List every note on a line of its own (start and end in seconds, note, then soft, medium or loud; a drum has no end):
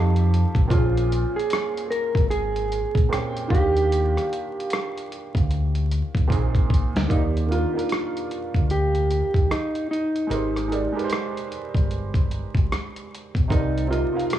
0.00 0.43 F2 loud
0.00 0.65 F3 medium
0.00 0.66 C4 medium
0.00 0.27 D#4 medium
0.00 0.67 D#4 medium
0.00 0.67 G4 medium
0.00 0.68 A4 medium
0.16 closed hi-hat soft
0.34 closed hi-hat medium
0.55 0.68 A1 medium
0.55 kick medium
0.55 closed hi-hat soft
0.68 1.23 A#1 loud
0.68 2.21 A#2 medium
0.68 2.22 A#3 medium
0.68 2.23 C4 medium
0.68 2.23 C#4 medium
0.68 1.37 F4 loud
0.68 kick loud
0.68 closed hi-hat loud
0.73 2.24 G#4 medium
0.97 closed hi-hat medium
1.12 closed hi-hat medium
1.36 1.90 G#4 loud
1.36 closed hi-hat soft
1.50 cross-stick loud
1.50 closed hi-hat medium
1.78 closed hi-hat soft
1.91 2.28 A#4 loud
1.91 closed hi-hat medium
2.15 2.81 G#1 medium
2.15 kick medium
2.15 closed hi-hat soft
2.30 3.50 G#4 loud
2.30 closed hi-hat medium
2.56 closed hi-hat soft
2.72 closed hi-hat medium
2.95 3.08 A#1 medium
2.95 kick medium
2.95 closed hi-hat medium
3.09 3.49 A#2 medium
3.09 3.47 A#3 medium
3.09 3.50 C4 medium
3.09 3.51 C#4 medium
3.09 cross-stick loud
3.13 3.52 G5 medium
3.13 closed hi-hat loud
3.37 closed hi-hat soft
3.48 4.16 D#2 loud
3.48 5.02 D#3 medium
3.48 5.02 A#3 medium
3.48 5.03 D4 medium
3.48 5.03 F4 medium
3.48 5.86 G4 medium
3.48 kick loud
3.53 5.04 G4 medium
3.53 closed hi-hat medium
3.77 closed hi-hat soft
3.92 closed hi-hat medium
4.17 cross-stick soft
4.17 closed hi-hat medium
4.33 closed hi-hat medium
4.60 closed hi-hat medium
4.70 cross-stick loud
4.70 closed hi-hat medium
4.97 closed hi-hat soft
5.12 closed hi-hat medium
5.35 6.00 D2 medium
5.35 kick medium
5.35 closed hi-hat soft
5.51 closed hi-hat medium
5.75 closed hi-hat medium
5.92 closed hi-hat medium
6.15 6.27 D#2 medium
6.15 kick medium
6.15 closed hi-hat medium
6.28 6.83 A#1 medium
6.28 7.05 A#2 medium
6.28 7.06 A#3 medium
6.28 7.06 C4 medium
6.28 7.07 D#4 medium
6.28 kick medium
6.32 7.07 G#4 medium
6.32 closed hi-hat medium
6.55 kick medium
6.55 closed hi-hat soft
6.70 kick medium
6.70 closed hi-hat medium
6.95 7.07 D2 medium
6.95 snare medium
6.95 closed hi-hat soft
7.08 7.63 D#2 loud
7.08 7.46 D#3 medium
7.08 7.47 A#3 medium
7.08 7.49 F4 medium
7.08 7.48 D5 medium
7.08 kick loud
7.08 closed hi-hat medium
7.12 7.23 D#4 medium
7.12 7.49 G4 medium
7.37 closed hi-hat soft
7.47 7.72 D#3 medium
7.47 7.72 A#3 medium
7.47 7.73 D4 medium
7.47 7.74 F4 medium
7.52 8.74 F4 medium
7.52 7.74 A#4 medium
7.52 closed hi-hat medium
7.72 9.22 A#3 medium
7.72 9.23 D4 medium
7.72 9.21 D#4 medium
7.72 9.23 F4 medium
7.77 9.24 A#4 medium
7.77 closed hi-hat soft
7.89 cross-stick loud
7.89 closed hi-hat medium
8.17 closed hi-hat soft
8.31 closed hi-hat medium
8.54 9.20 D2 medium
8.54 kick medium
8.54 closed hi-hat soft
8.70 9.53 G4 loud
8.70 closed hi-hat medium
8.95 closed hi-hat soft
9.11 closed hi-hat medium
9.34 9.47 D#2 medium
9.34 kick medium
9.34 closed hi-hat soft
9.51 9.90 D#4 medium
9.51 cross-stick loud
9.51 closed hi-hat medium
9.75 closed hi-hat soft
9.91 11.47 D#4 medium
9.91 closed hi-hat medium
10.16 closed hi-hat soft
10.27 10.83 G#1 loud
10.27 10.66 G#3 medium
10.27 10.67 D#4 medium
10.27 10.68 G4 medium
10.27 10.68 A#4 medium
10.31 10.69 C5 medium
10.31 closed hi-hat medium
10.56 cross-stick soft
10.56 closed hi-hat soft
10.68 10.91 G#3 medium
10.68 10.93 D#4 medium
10.68 10.93 G4 medium
10.68 10.94 A#4 medium
10.72 10.95 D5 medium
10.72 closed hi-hat medium
10.92 12.41 G#3 medium
10.92 12.42 D#4 medium
10.92 12.43 G4 medium
10.92 12.43 A#4 medium
10.98 11.01 B4 medium
10.98 closed hi-hat soft
11.04 12.47 C5 loud
11.10 cross-stick loud
11.10 closed hi-hat medium
11.37 closed hi-hat medium
11.52 closed hi-hat medium
11.75 12.40 G1 medium
11.75 kick medium
11.75 closed hi-hat soft
11.91 closed hi-hat medium
12.14 kick medium
12.14 closed hi-hat soft
12.31 closed hi-hat medium
12.55 12.67 G#1 medium
12.55 kick medium
12.55 closed hi-hat medium
12.72 cross-stick medium
12.72 closed hi-hat medium
12.96 closed hi-hat soft
13.15 closed hi-hat medium
13.35 13.47 B1 medium
13.35 kick medium
13.35 closed hi-hat soft
13.48 14.03 C2 loud
13.48 13.86 C3 medium
13.48 13.87 C4 medium
13.48 13.88 D#4 medium
13.48 13.87 D#4 loud
13.48 13.89 A#4 medium
13.48 kick loud
13.52 13.89 D5 medium
13.52 closed hi-hat medium
13.78 closed hi-hat soft
13.87 14.10 C3 medium
13.87 14.11 C4 medium
13.87 14.13 D#4 medium
13.87 14.39 F4 medium
13.87 14.14 A#4 medium
13.92 14.14 D#5 medium
13.92 closed hi-hat medium
14.11 14.39 C3 medium
14.11 14.39 C4 medium
14.11 14.39 D#4 medium
14.11 14.39 A#4 medium
14.16 14.39 F5 medium
14.16 closed hi-hat soft
14.30 cross-stick loud
14.30 closed hi-hat medium